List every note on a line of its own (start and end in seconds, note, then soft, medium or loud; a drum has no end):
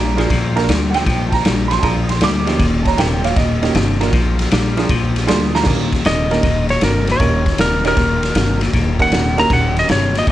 0.00 0.28 A#1 medium
0.00 0.15 A#2 medium
0.00 0.16 G3 medium
0.00 0.64 D5 medium
0.00 0.65 A#5 loud
0.17 0.29 A#2 medium
0.17 0.29 F3 medium
0.17 0.28 A#3 medium
0.17 0.29 D4 medium
0.17 0.28 F4 medium
0.17 0.29 G#4 medium
0.17 snare soft
0.17 ride medium
0.30 0.66 A#1 loud
0.30 0.66 A#2 medium
0.30 0.67 F3 medium
0.30 kick loud
0.30 snare soft
0.30 ride medium
0.56 0.67 A#3 medium
0.56 0.67 D4 medium
0.56 0.67 F4 medium
0.56 0.67 A#4 loud
0.56 snare soft
0.56 ride medium
0.68 1.04 D2 medium
0.68 0.92 A#2 medium
0.68 0.92 G3 loud
0.68 snare loud
0.68 ride medium
0.91 0.92 F#5 medium
0.91 ride medium
0.95 1.05 A#2 medium
0.95 1.06 F3 medium
0.95 1.32 G5 loud
0.95 snare soft
1.06 1.43 A#1 loud
1.06 1.42 A#2 medium
1.06 1.43 F3 loud
1.06 kick loud
1.06 snare soft
1.06 ride medium
1.29 1.31 A5 medium
1.29 kick medium
1.29 ride medium
1.33 1.70 A#5 loud
1.33 snare soft
1.45 1.81 A#1 medium
1.45 1.68 A#2 medium
1.45 1.68 G3 loud
1.45 snare loud
1.45 ride medium
1.68 1.82 A#2 medium
1.68 1.82 F3 medium
1.68 1.70 B5 medium
1.68 snare soft
1.68 ride medium
1.72 1.84 C6 loud
1.79 2.19 A#1 medium
1.79 2.19 A#2 medium
1.79 2.06 A#3 medium
1.79 2.06 D4 medium
1.79 2.06 F4 medium
1.79 2.06 G#4 medium
1.79 1.83 A5 medium
1.79 2.09 A#5 loud
1.79 kick loud
1.79 ride medium
1.84 2.19 F3 medium
1.84 snare soft
2.09 2.22 C6 medium
2.09 snare soft
2.09 ride medium
2.21 2.57 D2 medium
2.21 2.45 A#2 medium
2.21 2.45 G3 loud
2.21 2.60 D6 loud
2.21 snare loud
2.21 ride loud
2.46 2.58 A#2 medium
2.46 2.59 F3 medium
2.46 2.95 A#3 medium
2.46 2.95 C#4 medium
2.46 2.95 D#4 medium
2.46 2.95 G4 medium
2.46 snare soft
2.46 ride medium
2.59 2.96 D#1 loud
2.59 2.95 D#2 medium
2.59 2.96 A#2 loud
2.59 kick loud
2.59 snare soft
2.59 ride medium
2.83 2.98 C#5 medium
2.83 2.85 A5 medium
2.83 kick medium
2.83 snare soft
2.83 ride medium
2.88 2.99 A#5 medium
2.98 3.34 D#1 medium
2.98 3.22 D#2 medium
2.98 3.22 C3 medium
2.98 3.22 A#4 medium
2.98 3.23 G5 medium
2.98 snare loud
2.98 ride medium
3.24 3.35 D#2 medium
3.24 3.36 A#2 medium
3.24 3.35 C#5 medium
3.24 3.36 F5 medium
3.24 snare soft
3.24 ride medium
3.36 3.72 D#1 medium
3.36 3.72 D#2 medium
3.36 3.72 A#2 medium
3.36 4.11 D#5 medium
3.36 kick loud
3.36 snare soft
3.36 ride medium
3.62 3.73 A#3 medium
3.62 3.73 C#4 medium
3.62 3.74 D#4 medium
3.62 3.74 G4 medium
3.62 snare soft
3.62 ride medium
3.75 4.11 G1 medium
3.75 3.98 D#2 loud
3.75 3.98 C3 loud
3.75 snare loud
3.75 ride medium
4.00 4.12 D#2 medium
4.00 4.12 A#2 medium
4.00 4.12 A#3 medium
4.00 4.12 D4 medium
4.00 4.12 F4 medium
4.00 4.12 A#4 medium
4.00 snare soft
4.00 ride medium
4.13 4.49 A#1 loud
4.13 4.49 A#2 medium
4.13 4.49 F3 loud
4.13 kick loud
4.13 snare soft
4.13 ride medium
4.39 snare soft
4.39 ride medium
4.51 4.87 A#1 medium
4.51 4.75 A#2 medium
4.51 4.75 G3 loud
4.51 snare loud
4.51 ride medium
4.77 4.88 A#2 medium
4.77 4.89 F3 medium
4.77 4.88 A#3 medium
4.77 4.88 D4 medium
4.77 4.88 F4 medium
4.77 4.88 G#4 medium
4.77 snare soft
4.77 ride medium
4.89 5.26 A#1 loud
4.89 5.26 A#2 medium
4.89 5.26 F3 loud
4.89 kick loud
4.89 snare soft
4.89 ride medium
5.16 snare soft
5.16 ride medium
5.27 5.64 D2 loud
5.27 5.51 A#2 medium
5.27 5.52 G3 loud
5.27 5.51 A#3 medium
5.27 5.51 D4 medium
5.27 5.51 F4 medium
5.27 5.51 G#4 medium
5.27 5.53 C6 loud
5.27 snare loud
5.27 ride medium
5.55 5.65 A#2 medium
5.55 5.66 F3 medium
5.55 5.67 A#5 loud
5.55 snare medium
5.64 6.03 D#1 medium
5.64 6.03 D#2 loud
5.64 5.89 A#3 medium
5.64 5.90 C#4 medium
5.64 5.90 D#4 medium
5.64 5.90 G4 medium
5.64 5.90 A#4 medium
5.64 kick loud
5.64 snare loud
5.64 crash loud
5.68 6.03 A#2 medium
5.68 snare soft
5.93 kick medium
5.93 snare soft
5.93 ride medium
6.05 6.41 D#1 medium
6.05 6.28 D#2 medium
6.05 6.29 C3 medium
6.05 6.68 D#5 loud
6.05 snare loud
6.05 ride medium
6.31 6.42 D#2 medium
6.31 6.43 A#2 medium
6.31 6.42 A#3 medium
6.31 6.42 C#4 medium
6.31 6.42 D#4 medium
6.31 6.42 G4 medium
6.31 6.42 A#4 medium
6.31 snare soft
6.31 ride medium
6.43 6.79 D#1 medium
6.43 6.79 D#2 medium
6.43 6.80 A#2 medium
6.43 kick loud
6.43 snare soft
6.43 ride medium
6.69 6.82 C#5 medium
6.69 snare soft
6.69 ride medium
6.81 7.18 G1 medium
6.81 7.05 D#2 medium
6.81 7.06 C3 medium
6.81 7.08 A#4 medium
6.81 snare loud
6.81 ride medium
7.07 7.19 D#2 medium
7.07 7.20 A#2 medium
7.07 snare soft
7.07 ride medium
7.12 7.59 C#5 medium
7.20 7.56 D#1 loud
7.20 7.56 D#2 medium
7.20 7.56 A#2 loud
7.20 7.43 A#3 medium
7.20 7.43 C#4 medium
7.20 7.43 D#4 medium
7.20 7.44 G4 medium
7.20 7.44 A#4 medium
7.20 kick loud
7.20 snare soft
7.20 ride medium
7.46 kick medium
7.46 snare soft
7.46 ride medium
7.58 7.95 D#1 medium
7.58 7.82 D#2 medium
7.58 7.83 C3 medium
7.58 7.85 A#4 medium
7.58 snare loud
7.58 ride medium
7.84 7.96 D#2 medium
7.84 7.96 A#2 medium
7.84 7.96 A#3 medium
7.84 7.96 C#4 medium
7.84 7.96 D#4 medium
7.84 7.96 G4 medium
7.84 8.61 A#4 medium
7.84 7.96 C#5 medium
7.84 snare soft
7.84 ride medium
7.97 8.33 D#1 medium
7.97 8.33 D#2 medium
7.97 8.33 A#2 medium
7.97 kick loud
7.97 snare soft
7.97 ride medium
8.23 snare soft
8.23 ride medium
8.35 8.71 G1 medium
8.35 8.59 D#2 medium
8.35 8.59 C3 medium
8.35 snare loud
8.35 ride medium
8.61 8.73 D#2 medium
8.61 8.73 A#2 medium
8.61 snare soft
8.61 ride medium
8.73 9.10 D#1 loud
8.73 9.10 D#2 medium
8.73 9.10 A#2 loud
8.73 kick loud
8.73 snare soft
8.73 ride medium
8.99 9.35 A#3 medium
8.99 9.36 C#4 medium
8.99 9.36 D#4 medium
8.99 9.36 G4 medium
8.99 9.36 A#4 medium
8.99 9.38 F#5 medium
8.99 kick medium
8.99 snare soft
8.99 ride medium
9.11 9.48 D#1 medium
9.11 9.36 D#2 medium
9.11 9.36 C3 medium
9.11 snare loud
9.11 ride medium
9.38 9.49 D#2 medium
9.38 9.50 A#2 medium
9.38 9.86 A#3 medium
9.38 9.86 C#4 medium
9.38 9.86 D#4 medium
9.38 9.86 G4 medium
9.38 9.87 A#4 medium
9.38 9.51 A#5 medium
9.38 snare soft
9.38 ride medium
9.50 9.86 D#1 loud
9.50 9.87 D#2 medium
9.50 9.87 A#2 loud
9.50 9.77 F#5 medium
9.50 kick loud
9.50 snare soft
9.50 ride medium
9.77 9.90 D#5 medium
9.77 snare soft
9.77 ride medium
9.89 10.25 G1 medium
9.89 10.12 D#2 medium
9.89 10.13 C3 loud
9.89 10.16 C#5 medium
9.89 snare loud
9.89 ride medium
10.15 10.26 D#2 medium
10.15 10.27 A#2 medium
10.15 10.29 D#5 medium
10.15 snare soft
10.15 ride medium
10.27 10.32 D#1 medium
10.27 10.32 D#2 medium
10.27 10.32 A#2 loud
10.27 kick loud
10.27 snare soft
10.27 ride medium